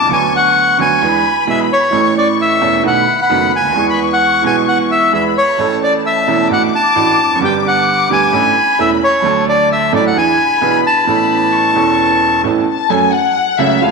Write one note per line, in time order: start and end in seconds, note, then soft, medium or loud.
0.00 0.06 C2 soft
0.00 0.11 D6 loud
0.05 0.11 C#2 medium
0.05 0.11 D3 medium
0.10 0.76 D2 medium
0.10 0.76 D3 medium
0.10 0.76 F#3 medium
0.10 0.76 B3 medium
0.10 0.77 F#4 medium
0.10 0.33 G#5 medium
0.10 1.02 C#6 medium
0.36 0.78 F#5 medium
0.79 0.98 D2 medium
0.79 0.98 D3 medium
0.79 0.98 F#3 medium
0.79 0.98 B3 medium
0.79 0.98 F#4 medium
0.79 1.45 G#5 medium
1.02 1.21 E2 medium
1.02 1.21 E3 medium
1.02 1.21 G#3 medium
1.02 1.21 B3 medium
1.02 1.21 G#4 medium
1.02 1.93 B5 medium
1.47 1.66 B1 medium
1.47 1.66 B2 medium
1.47 1.66 E3 medium
1.47 1.66 G#3 medium
1.47 1.67 B3 medium
1.47 1.67 G#4 medium
1.47 1.60 E5 medium
1.73 2.14 C#5 medium
1.90 2.58 A1 medium
1.90 2.58 A2 medium
1.90 2.57 E3 medium
1.90 2.57 A3 medium
1.90 2.58 C#4 medium
1.90 2.58 A4 medium
1.90 2.84 C#6 medium
2.18 2.28 D5 medium
2.41 2.82 E5 medium
2.61 2.81 E1 medium
2.61 2.80 E2 medium
2.61 2.80 E3 medium
2.61 2.81 A3 medium
2.61 2.81 C#4 medium
2.61 2.81 A4 medium
2.83 3.03 B1 medium
2.83 3.03 B2 medium
2.83 3.03 D#3 medium
2.83 3.03 A3 medium
2.83 3.03 B3 soft
2.83 3.03 F#4 medium
2.83 3.20 F#5 medium
2.83 3.76 B5 medium
3.22 3.52 F#5 medium
3.30 3.49 F#1 medium
3.30 3.49 F#2 medium
3.30 3.49 D#3 medium
3.30 3.49 A3 medium
3.30 3.49 B3 medium
3.30 3.49 F#4 medium
3.56 3.64 C#2 soft
3.56 3.86 G#5 medium
3.64 3.70 D2 medium
3.70 3.75 D#2 medium
3.70 3.75 E3 medium
3.75 4.40 E2 medium
3.75 4.40 E3 medium
3.75 4.40 G#3 medium
3.75 4.41 B3 medium
3.75 4.41 G#4 medium
3.75 5.09 C#6 medium
3.90 4.00 B5 medium
4.13 4.43 F#5 medium
4.42 5.09 B1 medium
4.42 5.09 B2 medium
4.42 5.08 E3 medium
4.42 5.09 G#3 medium
4.42 5.09 B3 medium
4.42 5.10 G#4 medium
4.47 4.56 G#5 medium
4.68 4.78 F#5 medium
4.91 5.13 E5 medium
5.12 5.32 E2 medium
5.12 5.32 E3 medium
5.12 5.32 G#3 soft
5.12 5.32 B3 soft
5.12 5.32 G#4 medium
5.12 5.24 E5 medium
5.12 5.59 B5 medium
5.37 5.79 C#5 medium
5.57 6.24 A1 medium
5.57 6.24 A2 medium
5.57 6.23 E3 medium
5.57 6.24 A3 medium
5.57 6.24 C#4 medium
5.57 6.25 A4 medium
5.57 6.50 A5 medium
5.84 5.93 D5 medium
6.06 6.48 E5 medium
6.27 6.47 E1 medium
6.27 6.47 E2 medium
6.27 6.46 E3 medium
6.27 6.47 A3 medium
6.27 6.47 C#4 medium
6.27 6.47 A4 medium
6.50 6.70 A1 medium
6.50 6.69 A2 medium
6.50 6.69 E3 soft
6.50 6.70 A3 medium
6.50 6.69 D4 soft
6.50 6.70 F#4 medium
6.50 6.63 F#5 medium
6.50 7.35 D6 medium
6.76 7.39 A5 medium
6.96 7.15 A1 medium
6.96 7.15 A2 medium
6.96 7.15 E3 medium
6.96 7.15 A3 soft
6.96 7.15 D4 medium
6.96 7.15 F#4 medium
7.25 7.30 E2 soft
7.30 7.36 F2 medium
7.35 7.41 F#2 medium
7.35 7.42 C#6 medium
7.39 8.07 G1 medium
7.39 8.06 G2 medium
7.39 8.06 D3 medium
7.39 8.06 G3 medium
7.39 8.07 B3 medium
7.39 8.33 D6 medium
7.44 8.08 G4 medium
7.44 7.54 G5 medium
7.68 8.09 F#5 medium
8.10 8.30 D2 medium
8.10 8.29 D3 medium
8.10 8.30 G3 medium
8.10 8.30 B3 medium
8.10 8.30 G4 medium
8.10 8.82 G#5 medium
8.32 8.52 A1 medium
8.32 8.52 A2 medium
8.32 8.52 E3 medium
8.32 8.52 A3 medium
8.32 8.52 C#4 soft
8.32 8.52 A4 medium
8.32 9.24 B5 medium
8.79 8.98 E1 medium
8.79 8.98 E2 medium
8.79 8.98 E3 medium
8.79 8.98 A3 medium
8.79 8.98 C#4 soft
8.79 8.98 A4 medium
8.79 8.90 E5 medium
9.04 9.45 C#5 medium
9.22 9.89 D2 medium
9.22 9.89 D3 medium
9.22 9.88 F#3 medium
9.22 9.89 A3 medium
9.22 9.90 D4 medium
9.22 9.90 A4 medium
9.22 10.15 A5 medium
9.49 9.69 D5 medium
9.72 9.92 E5 medium
9.93 10.12 A1 medium
9.93 10.12 A2 medium
9.93 10.12 F#3 medium
9.93 10.12 A3 medium
9.93 10.12 D4 medium
9.93 10.12 A4 medium
9.93 10.05 D5 medium
10.07 10.17 F#5 medium
10.15 10.35 E2 medium
10.15 10.35 E3 medium
10.15 10.35 B3 soft
10.15 10.35 D4 medium
10.15 10.35 G#4 medium
10.15 10.81 G#5 medium
10.15 11.04 B5 medium
10.61 10.81 B1 medium
10.61 10.81 B2 medium
10.61 10.81 E3 medium
10.61 10.81 B3 medium
10.61 10.81 D4 soft
10.61 10.81 G#4 medium
10.86 12.42 A5 medium
11.05 11.72 A1 medium
11.05 11.72 A2 medium
11.05 11.71 E3 medium
11.05 11.72 B3 soft
11.05 11.73 C#4 medium
11.05 11.50 B5 medium
11.09 11.73 A4 medium
11.53 12.45 C#6 medium
11.74 12.41 E1 medium
11.74 12.41 E2 medium
11.74 12.40 E3 medium
11.74 12.41 B3 medium
11.74 12.41 C#4 medium
11.78 12.42 A4 medium
12.44 12.64 A1 medium
12.44 12.64 A2 medium
12.44 12.64 E3 medium
12.44 12.64 B3 medium
12.44 12.64 C#4 medium
12.44 12.64 A4 medium
12.44 12.66 A5 medium
12.68 12.89 A5 medium
12.90 13.09 F#2 medium
12.90 13.10 F#3 medium
12.90 13.10 A3 medium
12.90 13.10 C#4 medium
12.90 13.10 A4 medium
12.90 13.14 G#5 medium
13.13 13.59 F#5 medium
13.59 13.78 C#2 medium
13.59 13.79 C#3 medium
13.59 13.78 F#3 medium
13.59 13.79 A3 medium
13.59 13.78 C#4 medium
13.59 13.79 A4 medium
13.59 13.82 E5 medium
13.81 13.91 F2 medium
13.81 13.91 F3 medium
13.81 13.91 G#3 medium
13.81 13.91 C#4 soft
13.81 13.91 G#4 medium
13.81 13.91 F5 medium